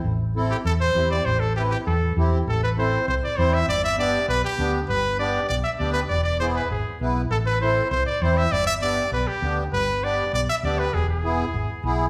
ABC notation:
X:1
M:4/4
L:1/8
Q:1/4=198
K:Am
V:1 name="Trumpet"
z3 G A c2 d | c A G G A2 z2 | A B c2 c d c e | d e d2 B G2 z |
B2 d2 d e d B | d d c B ^G2 z2 | A B c2 c d c e | d e d2 B G2 z |
B2 d2 d e d B | ^G G6 z |]
V:2 name="Accordion"
z2 [CEA] z3 [CEG] z | z2 [CEB] z3 [CEG] z | z2 [CEA] z3 [CEc] z | z2 [B,DG] z3 [B,DG] z |
z2 [B,DG] z3 [B,DG] z | z2 [B,E^G] z3 [B,EB] z | z2 [CEA] z3 [CEc] z | z2 [B,DG] z3 [B,DG] z |
z2 [B,DG] z3 [B,DG] z | z2 [B,E^G] z3 [B,EG] z |]
V:3 name="Fingered electric bass" clef=bass
A,,,4 E,,2 E,,2 | A,,,4 E,,2 E,,2 | A,,,4 C,, z E,,2 | G,,,4 B,,, z D,,2 |
G,,,4 B,,, z D,,2 | E,,,4 ^G,,, z B,,,2 | A,,,4 C,, z E,,2 | G,,,4 B,,, z D,,2 |
G,,,4 B,,, z D,,2 | E,,,4 ^G,,, z B,,,2 |]